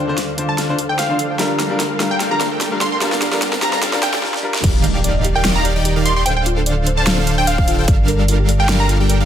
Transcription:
Already playing: ambient pad D2 D3 A3 F4 C5, analog polysynth D3 D4 A4 C5 F5, riser
0.07 grand piano D3 D4 F4 C5
0.18 snare, closed hi-hat
0.37 grand piano D3 D4 F4 C5, closed hi-hat
0.49 digital synth lead A5
0.58 analog polysynth D3 D4 A4 C5 F5, snare, closed hi-hat
0.68 grand piano D3 D4 F4 C5
0.79 closed hi-hat
0.89 analog polysynth D3 D4 A4 C5 G5, digital synth lead G5
0.99 digital synth lead F5, snare, closed hi-hat
1.09 grand piano D3 D4 F4 C5, analog polysynth D3 D4 A4 C5 F5
1.19 closed hi-hat
1.30 analog polysynth D3 D4 A4 C5 G5
1.38 ambient pad G2 A#3 A5, grand piano G3 D4 F4 A#4, analog polysynth G3 D4 A4 A#4 F5, snare, closed hi-hat
1.60 snare, closed hi-hat
1.69 grand piano G3 D4 F4 A#4
1.80 snare, closed hi-hat
1.99 grand piano G3 D4 F4 A#4, snare, closed hi-hat
2.11 digital synth lead G5
2.20 analog polysynth G3 D4 A4 A#4 F5, snare, closed hi-hat
2.30 grand piano G3 D4 F4 A#4, digital synth lead A#5
2.41 snare, closed hi-hat
2.51 analog polysynth G3 D4 A4 A#4 G5
2.61 snare, closed hi-hat
2.71 grand piano G3 D4 F4 A#4, analog polysynth G3 D4 A4 A#4 F5
2.81 digital synth lead C6, snare, closed hi-hat
2.92 analog polysynth G3 D4 A4 A#4 G5, digital synth lead C6
3.00 grand piano G3 D4 F4 A#4, analog polysynth G3 D4 A4 A#4 F5, snare, closed hi-hat
3.12 snare
3.22 snare, closed hi-hat
3.31 grand piano G3 D4 F4 A#4, snare
3.42 snare, closed hi-hat
3.53 snare
3.61 grand piano G3 D4 F4 A#4, digital synth lead A#5, snare, closed hi-hat
3.73 digital synth lead A#5, snare
3.83 analog polysynth G3 D4 A4 A#4 F5, snare, closed hi-hat
3.92 grand piano G3 D4 F4 A#4, snare
4.03 digital synth lead G5, snare, closed hi-hat
4.14 analog polysynth G3 D4 A4 A#4 G5, snare
4.22 grand piano G3 D4 F4 A#4, snare
4.34 snare
4.42 grand piano G3 D4 F4 A#4
4.54 snare
4.64 sub bass D#1, analog polysynth D#3 D#4 G4 D5 F5, synth arpeggio sound G4, kick, closed hi-hat, crash, impact
4.74 synth arpeggio sound A#4
4.84 synth arpeggio sound D#5, closed hi-hat
4.95 synth arpeggio sound G5
5.04 synth arpeggio sound D5, closed hi-hat
5.15 synth arpeggio sound D#5
5.24 synth arpeggio sound G4, closed hi-hat
5.35 synth arpeggio sound A#4, digital synth lead G5
5.45 analog polysynth D#3 D#4 G4 D5 F5, synth arpeggio sound D#5, snare, closed hi-hat
5.56 synth arpeggio sound G5, digital synth lead A#5
5.65 synth arpeggio sound D5, closed hi-hat
5.76 analog polysynth D#3 D#4 G4 D5 G5, synth arpeggio sound D#5
5.85 synth arpeggio sound G4, closed hi-hat
5.96 analog polysynth D#3 D#4 G4 D5 F5, synth arpeggio sound A#4
6.05 synth arpeggio sound D#5, digital synth lead C6, closed hi-hat
6.16 analog polysynth D#3 D#4 G4 D5 G5, synth arpeggio sound G5, digital synth lead C6
6.26 sub bass D1, analog polysynth D3 D4 A4 C5 F5, synth arpeggio sound C5, digital synth lead G5, closed hi-hat
6.37 synth arpeggio sound D5, digital synth lead G5
6.46 synth arpeggio sound F4, closed hi-hat
6.57 synth arpeggio sound A4
6.66 synth arpeggio sound D5, closed hi-hat
6.77 synth arpeggio sound F5
6.87 synth arpeggio sound C5, closed hi-hat
6.97 synth arpeggio sound D5, digital synth lead A5
7.07 analog polysynth D3 D4 A4 C5 F5, synth arpeggio sound F4, snare, closed hi-hat
7.18 synth arpeggio sound A4, snare
7.27 synth arpeggio sound D5, closed hi-hat
7.38 analog polysynth D3 D4 A4 C5 G5, synth arpeggio sound F5, digital synth lead G5
7.47 synth arpeggio sound C5, digital synth lead F5, closed hi-hat
7.58 analog polysynth D4 A4 C5 F5, synth arpeggio sound D5, kick
7.68 synth arpeggio sound F4, closed hi-hat
7.79 analog polysynth D3 D4 A4 C5 G5, synth arpeggio sound A4
7.88 sub bass G1, synth arpeggio sound D5, analog polysynth F5, kick, closed hi-hat
7.99 synth arpeggio sound F5
8.08 synth arpeggio sound A#4, closed hi-hat
8.19 synth arpeggio sound D5
8.28 synth arpeggio sound F4, closed hi-hat
8.39 synth arpeggio sound G4
8.49 synth arpeggio sound D5, closed hi-hat
8.60 synth arpeggio sound F5, digital synth lead G5
8.69 analog polysynth G3 D4 A4 A#4 F5, synth arpeggio sound A#4, snare, closed hi-hat
8.80 synth arpeggio sound D5, digital synth lead A#5
8.89 synth arpeggio sound F4, closed hi-hat
9.00 analog polysynth G3 D4 A4 A#4 G5, synth arpeggio sound G4
9.10 synth arpeggio sound D5, closed hi-hat
9.20 analog polysynth G3 D4 A4 A#4 F5, synth arpeggio sound F5

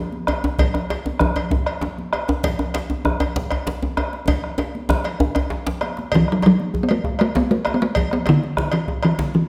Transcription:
0.12 djembe slap, high conga
0.27 bombo rim, cowbell, djembe tone
0.43 djembe slap, high conga, djembe tone
0.58 bombo low, cowbell, djembe tone, low conga, djembe bass
0.74 bombo rim, djembe tone
0.90 cowbell, djembe slap, djembe tone
1.06 djembe slap, djembe tone, high conga
1.19 bombo rim, high conga, djembe tone, low conga, djembe bass
1.36 cowbell, djembe tone
1.51 bombo rim, bombo low, djembe tone
1.66 bombo rim, cowbell
1.81 bombo rim, djembe slap, high conga, djembe tone, djembe bass, low conga
1.97 djembe slap, high conga
2.13 bombo rim, cowbell, djembe tone
2.28 djembe slap, high conga, djembe tone
2.43 bombo low, cowbell, djembe slap, low conga, djembe bass
2.59 bombo rim, djembe slap, djembe tone
2.74 cowbell, djembe slap, djembe tone
2.90 djembe slap, djembe tone, high conga
3.05 bombo rim, high conga, djembe tone, low conga, djembe bass
3.20 cowbell, djembe slap, djembe tone
3.36 bombo rim, bombo low, djembe slap, djembe tone
3.51 bombo rim, cowbell, djembe tone
3.67 bombo rim, djembe slap, high conga, djembe bass, low conga
3.82 djembe slap, high conga, djembe tone
3.97 bombo rim, cowbell, djembe tone
4.13 djembe slap, high conga
4.28 bombo low, cowbell, djembe slap, djembe tone, low conga, djembe bass
4.44 bombo rim, djembe slap
4.58 cowbell, djembe slap, djembe tone
4.74 djembe slap, high conga
4.89 bombo rim, djembe tone, high conga, djembe bass, low conga
5.04 cowbell, djembe slap, high conga
5.20 bombo rim, bombo low, djembe slap, djembe tone
5.35 bombo rim, cowbell, djembe slap, djembe tone
5.50 bombo rim, djembe slap, djembe bass, low conga
5.66 bombo rim, djembe slap, low conga
5.81 bombo rim, cowbell, djembe tone, high conga
5.97 bombo rim, djembe slap, high conga
6.12 talking drum E3, bombo low, cowbell, djembe bass, low conga
6.27 bombo rim, djembe slap
6.32 talking drum F#3
6.42 talking drum F#3, cowbell, djembe slap, djembe tone
6.58 djembe slap, high conga
6.74 high conga, djembe bass, low conga
6.83 talking drum B3
6.89 talking drum A3, cowbell
7.04 bombo rim, bombo low, djembe tone
7.19 talking drum A3, bombo rim, cowbell
7.35 talking drum B3, bombo rim, djembe slap, high conga, low conga, djembe bass
7.51 talking drum A3, djembe slap, high conga
7.65 bombo rim, cowbell, djembe tone
7.74 talking drum B3
7.82 talking drum A3, djembe slap, high conga
7.95 bombo low, cowbell, djembe bass, low conga
8.11 talking drum B3, bombo rim, djembe slap
8.26 talking drum D3, cowbell, djembe slap, djembe tone
8.42 djembe slap, high conga
8.57 talking drum D3, bombo rim, high conga, djembe bass, low conga
8.72 talking drum E3, cowbell, djembe slap
8.88 bombo rim, bombo low, djembe tone
9.03 talking drum E3, bombo rim, cowbell
9.19 talking drum D3, bombo rim, djembe slap, high conga, djembe bass, low conga
9.34 talking drum E3, djembe slap, high conga

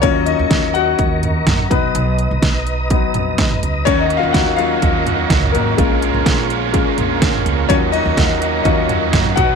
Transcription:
Already playing: tonewheel organ C#6
0.02 upright bass D#2, grand piano F#3 C#4 F4 C#5, tonewheel organ A#4 D#5 A#5, kick, closed hi-hat
0.26 grand piano D#4 D#5, closed hi-hat
0.39 upright bass D#2
0.50 upright bass D#2, kick, snare, closed hi-hat
0.74 grand piano F#4 F#5, closed hi-hat
0.99 upright bass D#2, kick, closed hi-hat
1.23 closed hi-hat, floor tom
1.47 upright bass F#2, kick, snare, closed hi-hat
1.59 floor tom
1.70 upright bass B1, grand piano F#3 B3 D#4 B4, tonewheel organ B4 D#5 D#6, kick, closed hi-hat
1.95 upright bass B1, closed hi-hat
2.18 closed hi-hat
2.31 upright bass B1
2.42 upright bass B1, kick, snare, closed hi-hat
2.67 closed hi-hat
2.90 grand piano F#3 B3 D#4, kick, closed hi-hat
3.14 upright bass A#1, closed hi-hat, floor tom
3.38 kick, snare, closed hi-hat
3.51 floor tom
3.63 upright bass C#2, closed hi-hat
3.85 upright bass D#2, overdriven electric guitar D#3 F#3 A#3 C#4 F#4, grand piano C#4 C#5, tonewheel organ A#4 C#6, kick, closed hi-hat
4.01 grand piano D#4 D#5
4.10 overdriven electric guitar A#3 C#4 F#4, closed hi-hat
4.17 grand piano F4 F5
4.23 upright bass D#2
4.33 upright bass D#2, overdriven electric guitar D#3 F#3 A#3 C#4 F#4, grand piano F#4 F#5, kick, snare, closed hi-hat
4.56 grand piano F#3 C#4 F4 F#4 F5, overdriven electric guitar A#3 C#4 F#4, closed hi-hat
4.82 upright bass D#2, overdriven electric guitar F#3 A#3 C#4 F#4, kick, closed hi-hat
5.06 overdriven electric guitar A#3 C#4 F#4, closed hi-hat, floor tom
5.30 upright bass C#2, overdriven electric guitar D#3 F#3 A#3 C#4 F#4, kick, snare, closed hi-hat
5.43 floor tom
5.52 upright bass G#1, grand piano A#3 A#4, closed hi-hat
5.77 upright bass A#1, overdriven electric guitar A#2 F3 G#3 C#4 F4 A#4, grand piano G#3 C#4 F4, tonewheel organ A#4 F5 G#5, kick, closed hi-hat
6.01 overdriven electric guitar G#3 C#4 F4 A#4, closed hi-hat
6.14 upright bass A#1
6.25 upright bass A#1, overdriven electric guitar A#2 F3 G#3 C#4 F4 A#4, kick, snare, closed hi-hat
6.49 overdriven electric guitar G#3 C#4 F4 A#4, closed hi-hat
6.73 overdriven electric guitar G#3 C#4 F4 A#4, grand piano G#3 C#4 F4, kick, closed hi-hat
6.98 upright bass A#1, overdriven electric guitar G#3 C#4 F4 A#4, closed hi-hat, floor tom
7.21 overdriven electric guitar A#2 F3 G#3 C#4 F4 A#4, kick, snare, closed hi-hat
7.34 floor tom
7.46 upright bass C#2, closed hi-hat
7.69 upright bass D#2, overdriven electric guitar D#3 F#3 A#3 C#4 F#4, grand piano F#3 C#4 F4 C#5, tonewheel organ D#5 A#5 C#6, kick, closed hi-hat
7.92 overdriven electric guitar A#3 C#4 F#4, grand piano D#4 D#5, closed hi-hat
8.06 upright bass D#2
8.17 upright bass D#2, overdriven electric guitar D#3 F#3 A#3 C#4 F#4, kick, snare, closed hi-hat
8.41 overdriven electric guitar A#3 C#4 F#4, closed hi-hat
8.63 upright bass D#2, overdriven electric guitar F#3 A#3 C#4 F#4, grand piano F#3 C#4 D#4 F4 D#5, kick, closed hi-hat
8.89 overdriven electric guitar A#3 C#4 F#4, closed hi-hat, floor tom
9.13 upright bass F#2, overdriven electric guitar D#3 F#3 A#3 C#4 F#4, kick, snare, closed hi-hat
9.25 floor tom
9.36 upright bass B1, overdriven electric guitar B2 F#3 B3 D#4 F#4, grand piano F#4 F#5, tonewheel organ B4 D#5 D#6, kick, closed hi-hat

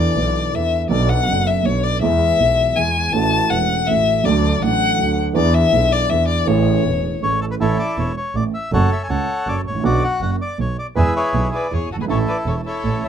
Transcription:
Already playing: double bass E2, upright piano E2 E3 B3 D4 A4, violin D5
0.15 upright piano B1 B2 E3 B3 D4, double bass B1
0.52 upright piano E2 E3 B3 D4, double bass E2, violin E5
0.56 upright piano A4
0.89 upright piano B1 B2 F#3 B3 D4 A4, double bass B1, violin D5
1.09 violin F#5
1.26 upright piano F#1 F#2 F#3 B3 D4, double bass F#1
1.30 upright piano A4
1.47 violin E5
1.63 upright piano B1 B2 F#3 B3 D4 A4, double bass B1, violin C#5
1.83 violin D5
2.00 double bass E2, upright piano E2 E3 G#3 B3 G#4, violin E5
2.38 upright piano B1 B2 E3 G#3 B3, double bass B1
2.42 upright piano G#4
2.75 double bass E2, upright piano E2 E3 G#3 B3, violin G#5
2.79 upright piano G#4
3.12 upright piano A1 A2 E3 A3 C#4, double bass A1, violin A5
3.16 upright piano F#4
3.49 upright piano E1 E2 E3 A3 C#4, double bass E1, violin F#5
3.87 upright piano A1 A2 E3 A3 C#4, double bass A1, violin E5
3.91 upright piano F#4
4.24 double bass D2, upright piano D2 D3 F#3 A3 D4, violin D5
4.28 upright piano A4
4.61 double bass A1, upright piano A1 A2 F#3 A3 D4, violin F#5
4.65 upright piano A4
4.97 upright piano D2 D3 F#3 A3 D4 A4, double bass D2
5.33 upright piano E2 E3 B3 D4 G#4, double bass E2, violin D5
5.55 violin E5
5.71 upright piano B1 B2 E3 B3 D4, double bass B1
5.75 upright piano G#4
5.92 violin D5
6.09 upright piano E2 E3 B3 D4 G#4, double bass E2, violin E5
6.28 violin D5
6.45 upright piano A1 A2 E3 A3 C#4, double bass A1, violin C#5
6.49 upright piano G#4
6.83 upright piano E1 E2 E3 A3 C#4, double bass E1
7.21 upright piano A1 A2 E3 A3 C#4 G#4, double bass A1, bandoneon C#5
7.41 bandoneon A4
7.51 bandoneon B4
7.60 upright piano A1 A2 E3 A3 C#4 A4, double bass A1, bandoneon E4 A4 C#5
7.79 bandoneon D5
7.97 upright piano E1 E2, double bass E1, bandoneon C#5
8.17 bandoneon C#5
8.35 double bass A1, upright piano A1 A2, bandoneon D5
8.54 bandoneon E5
8.72 double bass F#1, upright piano F#2 F#3 A3 C#4 A4, bandoneon A4 C#5 F#5
8.92 bandoneon E5
9.03 bandoneon G#5
9.09 double bass C#2, upright piano C#2 C#3, bandoneon A4 C#5 F#5
9.47 double bass F#1, upright piano F#2 F#3, bandoneon D5
9.65 double bass A1, bandoneon C#5
9.70 upright piano G#1
9.74 upright piano A1
9.79 upright piano A#1
9.83 upright piano B1 B2 D3 B3 C#4 F#4, double bass B1, bandoneon F#4 D5
10.04 bandoneon F#5
10.21 double bass F#1, upright piano F#1 F#2, bandoneon F#5
10.42 bandoneon D5
10.58 upright piano B1 B2, double bass B1, bandoneon C#5
10.79 bandoneon D5
10.95 upright piano E2 E3 G#3 B3 G#4, double bass E2, bandoneon G#4 B4 E5
11.15 bandoneon E4 G#4 C#5
11.34 double bass B1, upright piano B1 B2
11.53 violin B4, bandoneon D5
11.71 upright piano E2 E3, double bass E2, violin G#4, bandoneon C#5
11.90 double bass G1, violin F#4, bandoneon A4
11.95 upright piano F#1 G1
12.01 upright piano G#1, violin G#4, bandoneon B4
12.07 upright piano A1 A2 E3 A3 C#4 A4, double bass A1, bandoneon E4 A4 C#5, violin A4
12.28 violin B4, bandoneon D5
12.45 upright piano E1 E2, double bass E1, violin A4, bandoneon C#5
12.65 bandoneon E4 A4 C#5, violin A4
12.84 upright piano A1 A2, double bass A1
13.04 double bass C2, violin C#5, bandoneon E5

